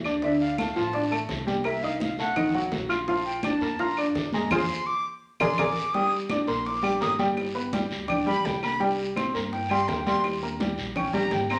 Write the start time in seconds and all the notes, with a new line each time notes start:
Already playing: D2
0.04 D4 D5 D6, high conga, short guiro, claves
0.22 D3 D4 D5 E5, high bongo, long guiro
0.40 F5, high conga
0.58 A3 A4 F5 A5, high bongo, high conga, short guiro, claves
0.76 A1 F3 F4 F5 A5, high conga, short guiro
0.93 D4 D5 D6, high bongo, high conga, long guiro
1.11 A3 A4 A5, high conga, claves
1.29 C2, high bongo, low bongo, high conga, short guiro
1.47 G3 G4 G5, high conga, short guiro
1.64 A#3 A#4 E5 A#5, high bongo, high conga, long guiro, claves
1.83 D#4 D#5 F5 D#6, high bongo, high conga
2.00 F5, high bongo, high conga, short guiro
2.18 B1 A3 A4 F#5 A5, high bongo, high conga, short guiro
2.36 D#3 D#4 D#5, high bongo, high conga, low conga, long guiro, claves
2.54 B1 F#3 F#4 F#5, high bongo, high conga
2.72 A#1, high bongo, low bongo, high conga, short guiro
2.89 F4 F5 F6, high conga, short guiro, claves
3.08 F3 F4 F5, high bongo, long guiro
3.25 G5, high conga
3.43 D4 D5 A5 D6, high bongo, high conga, short guiro, claves
3.61 F2 A#3 A#4 A#5, high conga, short guiro
3.78 F4 F5 A#5 F6, high bongo, high conga, long guiro
3.97 D4 D5 D6, high conga, claves
4.15 F2, high bongo, low bongo, high conga, short guiro
4.32 G#3 G#4 G#5 A#5, high conga, short guiro
4.50 F2 F4 G#4 C5 C6, low bongo, low conga, long guiro, claves
4.86 D6
5.40 A#1 G#4 A#4 D5 C6, low bongo, low conga, long guiro, claves
5.58 A#1 G#4 A#4 D5 D6, low bongo, low conga, long guiro, claves
5.94 G3 G4 G5 D#6, high bongo, high conga, long guiro
6.12 high conga
6.29 D4 D5 D6, high bongo, high conga, short guiro, claves
6.47 A#1 A#3 A#4 A#5 C6, high conga, short guiro
6.65 D6, high bongo, high conga, long guiro
6.82 G3 G4 G5, claves
7.01 G1 A#3 A#4 A#5 D#6, high bongo, low bongo, high conga, short guiro
7.19 G3 G4 G5, high conga, short guiro
7.37 high bongo, high conga, long guiro, claves
7.55 B3 B4 B5, high bongo, high conga
7.73 G3 G4 G5, high bongo, high conga, short guiro
7.90 D2, high bongo, high conga, short guiro
8.08 D4 D5 G5 D6, high bongo, high conga, low conga, long guiro, claves
8.26 D2 G3 G4 G5 B5, high bongo, high conga, low conga
8.45 C2 G5, high bongo, low bongo, high conga, short guiro
8.62 A#3 A#4 A#5 B5, high conga, short guiro, claves
8.80 G3 G4 G5, high bongo, high conga, long guiro
8.99 high conga
9.16 C4 C5 C6, high bongo, high conga, short guiro, claves
9.34 G2 A#3 A#4 A#5, high conga, short guiro
9.52 G5, high bongo, high conga, long guiro
9.70 G3 G4 G5 C6, high conga, claves
9.88 D#2 A#3 A#4 G5 A#5, high bongo, low bongo, high conga, short guiro
10.06 G3 G4 G5 C6, high conga, short guiro
10.24 high bongo, high conga, long guiro, claves
10.42 A#3 A#4 A#5, high bongo, high conga
10.60 G3 G4 G5, high bongo, high conga, short guiro
10.77 A#1, high bongo, high conga, short guiro
10.96 C#4 C#5 G5 C#6, high bongo, high conga, low conga, long guiro, claves
11.13 A#1 G3 G4 G5 A#5, high bongo, high conga, low conga
11.31 G#1 G5, high bongo, low bongo, high conga, short guiro
11.49 C4 C5 A#5 C6, high conga, short guiro, claves